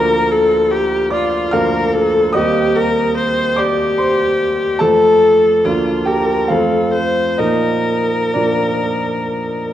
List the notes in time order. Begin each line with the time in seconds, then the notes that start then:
Already playing: D2 F3 A#3 D4 A#4 A#5
0.31 A4
0.71 G4
1.10 F4 D5 D6
1.51 D2 F3 A#3 D4 A#4 F5 F6
1.94 A4
2.33 D#2 G3 A#3 C4 G4 D#5 D#6
2.76 A#4
3.16 C5
3.56 G4 D5 D6
3.98 C5 C6
4.79 F2 F3 A3 C4 A4 A5
5.65 D2 F3 A#3 D4 F4
6.05 G4 A#4 G5
6.48 F2 F3 A3 C4 F4 A4 F5
6.93 C5
7.38 A#2 F3 A#3 D#4 A#4 D#5
8.34 A#2 F3 A#3 D4 D5